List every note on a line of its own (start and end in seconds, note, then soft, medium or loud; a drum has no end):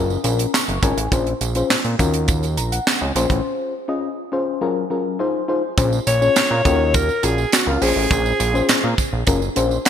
0.00 0.18 F#1 loud
0.00 0.18 C#4 medium
0.00 0.19 F4 medium
0.00 0.19 G#4 medium
0.00 0.19 A#4 loud
0.10 tambourine soft
0.24 0.47 A#1 loud
0.24 0.51 C#4 medium
0.24 0.52 F4 medium
0.24 0.52 G#4 medium
0.24 0.52 A#4 medium
0.24 closed hi-hat medium
0.24 tambourine medium
0.39 closed hi-hat medium
0.39 tambourine soft
0.54 0.81 C#6 medium
0.54 snare medium
0.54 clap medium
0.54 tambourine loud
0.68 0.79 F#1 medium
0.68 closed hi-hat soft
0.82 0.94 G#1 loud
0.82 0.96 C#4 medium
0.82 0.96 F4 medium
0.82 0.97 G#4 medium
0.82 0.97 A#4 medium
0.82 1.10 G#5 medium
0.82 kick loud
0.82 closed hi-hat medium
0.82 tambourine medium
0.97 1.08 A1 medium
0.97 closed hi-hat medium
1.12 1.34 A#1 loud
1.12 1.32 C#4 medium
1.12 1.32 F4 medium
1.12 1.33 G#4 medium
1.12 1.33 C5 medium
1.12 kick loud
1.12 closed hi-hat medium
1.12 tambourine medium
1.27 closed hi-hat soft
1.41 1.63 A#1 medium
1.41 closed hi-hat medium
1.41 tambourine soft
1.55 1.76 C#4 medium
1.55 1.76 F4 medium
1.55 1.76 G#4 medium
1.55 1.76 C5 medium
1.55 closed hi-hat soft
1.55 tambourine soft
1.70 1.76 A#2 soft
1.70 snare loud
1.70 clap medium
1.70 tambourine medium
1.84 1.96 A#2 loud
1.84 closed hi-hat soft
1.99 2.59 D#2 loud
1.99 2.46 C#4 medium
1.99 2.46 F4 medium
1.99 2.46 F#4 medium
1.99 2.46 A#4 loud
1.99 kick medium
1.99 closed hi-hat medium
1.99 tambourine soft
2.14 closed hi-hat medium
2.28 kick loud
2.28 closed hi-hat medium
2.28 tambourine medium
2.43 closed hi-hat soft
2.43 tambourine soft
2.57 2.80 A#1 loud
2.57 2.71 A#5 medium
2.57 closed hi-hat medium
2.57 tambourine medium
2.72 3.00 F#5 medium
2.72 closed hi-hat medium
2.72 tambourine soft
2.87 snare loud
2.87 clap medium
2.87 tambourine medium
3.01 3.12 C#2 medium
3.01 3.29 D#5 medium
3.15 3.27 A#1 loud
3.15 3.74 C#4 medium
3.15 3.74 F4 medium
3.15 3.74 G#4 medium
3.15 3.74 C5 loud
3.15 closed hi-hat medium
3.15 tambourine soft
3.30 3.41 A1 medium
3.30 kick medium
3.30 closed hi-hat soft
3.88 4.09 C#4 medium
3.88 4.09 F4 medium
3.88 4.09 G#4 medium
3.88 4.09 D#5 medium
4.32 4.59 C#4 medium
4.32 4.60 F4 medium
4.32 4.60 G#4 medium
4.32 4.60 C5 loud
4.61 4.84 F#3 medium
4.61 4.85 C#4 medium
4.61 4.85 F4 medium
4.61 4.85 G#4 medium
4.61 4.85 A#4 loud
4.90 5.18 F#3 medium
4.90 5.18 C#4 medium
4.90 5.18 F4 medium
4.90 5.18 G#4 medium
4.90 5.18 A#4 medium
5.19 5.43 D#4 medium
5.19 5.43 F4 medium
5.19 5.43 G#4 medium
5.19 5.43 C5 medium
5.48 5.62 D#4 medium
5.48 5.62 F4 medium
5.48 5.62 G#4 medium
5.48 5.63 C5 loud
5.78 6.00 A#1 loud
5.78 5.98 C#4 medium
5.78 5.98 F4 medium
5.78 5.99 G#4 medium
5.78 5.99 C5 medium
5.78 kick loud
5.78 closed hi-hat medium
5.78 tambourine medium
5.93 tambourine soft
6.07 6.29 A#1 loud
6.07 6.96 C#5 loud
6.07 closed hi-hat medium
6.07 tambourine soft
6.21 6.55 C#4 medium
6.21 6.56 F4 medium
6.21 6.56 G#4 medium
6.21 6.56 C#5 medium
6.21 tambourine soft
6.36 6.42 A#2 medium
6.36 snare loud
6.36 clap medium
6.36 closed hi-hat medium
6.36 tambourine medium
6.51 6.62 A#2 loud
6.65 7.10 D#2 medium
6.65 7.12 C#4 medium
6.65 7.12 F4 medium
6.65 7.12 F#4 medium
6.65 6.72 A4 medium
6.65 kick medium
6.65 closed hi-hat medium
6.65 tambourine soft
6.72 7.15 A#4 medium
6.94 7.26 A#4 loud
6.94 kick loud
6.94 closed hi-hat medium
6.94 tambourine medium
7.09 tambourine soft
7.23 7.46 A#1 medium
7.23 7.44 C#4 medium
7.23 7.44 F4 medium
7.23 7.44 F#4 medium
7.23 7.55 G#4 medium
7.23 7.44 A#4 medium
7.23 closed hi-hat medium
7.23 tambourine medium
7.38 tambourine soft
7.52 7.70 F#4 medium
7.52 snare loud
7.52 clap medium
7.52 closed hi-hat medium
7.52 tambourine loud
7.67 7.78 C#2 loud
7.67 7.80 C#4 medium
7.67 7.80 F4 medium
7.67 7.84 F4 medium
7.67 7.82 F#4 medium
7.67 7.82 A#4 medium
7.81 7.93 A#1 loud
7.81 8.40 C#4 medium
7.81 8.40 F4 medium
7.81 8.40 G#4 medium
7.81 8.98 G#4 loud
7.81 8.40 C5 medium
7.81 open hi-hat medium
7.81 tambourine soft
7.96 8.07 A1 medium
8.11 8.33 A#1 loud
8.11 kick loud
8.11 closed hi-hat medium
8.11 tambourine soft
8.26 tambourine soft
8.40 8.62 A#1 loud
8.40 closed hi-hat medium
8.40 tambourine medium
8.54 8.88 C#4 medium
8.54 8.89 F4 medium
8.54 8.89 G#4 medium
8.54 8.89 C5 medium
8.54 tambourine soft
8.69 8.75 A#2 soft
8.69 snare loud
8.69 clap medium
8.69 closed hi-hat medium
8.69 tambourine medium
8.84 8.95 A#2 loud
8.98 kick medium
8.98 closed hi-hat medium
8.98 tambourine medium
9.13 9.24 A#1 medium
9.27 9.50 F#1 loud
9.27 9.41 C#4 medium
9.27 9.41 F4 medium
9.27 9.41 G#4 medium
9.27 9.41 A#4 loud
9.27 kick loud
9.27 closed hi-hat medium
9.27 tambourine medium
9.42 tambourine soft
9.56 9.79 A#1 loud
9.56 9.77 C#4 medium
9.56 9.77 F4 medium
9.56 9.77 G#4 medium
9.56 9.77 C5 loud
9.56 closed hi-hat medium
9.56 tambourine medium
9.71 tambourine soft
9.85 9.89 F#5 medium
9.85 snare loud
9.85 closed hi-hat medium